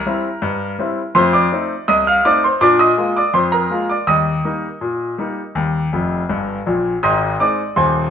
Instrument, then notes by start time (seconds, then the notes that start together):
grand piano
Already playing: A#4 A#5
0.06 G3 C4 E4
0.42 G2
0.79 G3 C4 E4
1.15 F2 A3 C5 C6
1.33 D5 D6
1.52 A3 C4 D#4
1.88 C2 D#5 D#6
2.07 F5 F6
2.25 A3 C4 D#4 D5 D6
2.44 C5 C6
2.61 A#2 D4 D5 D6
2.79 D#5 D#6
2.97 G#3 A#3 F4
3.17 D5 D6
3.34 F2 C5 C6
3.52 A#4 A#5
3.70 G#3 A#3 F4
3.90 D5 D6
4.07 D#2 G3 D#5 D#6
4.45 G3 A#3 D#4
4.81 A#2
5.18 G3 A#3 D#4
5.55 D#2 G3
5.93 F1 F2
6.29 G1 G2
6.66 A#1 A#2
7.03 G#1 G#2 D#5 C6 D#6
7.40 G#3 C4 D#4 D5 D6
7.76 D#1 D#2 C5 G#5 C6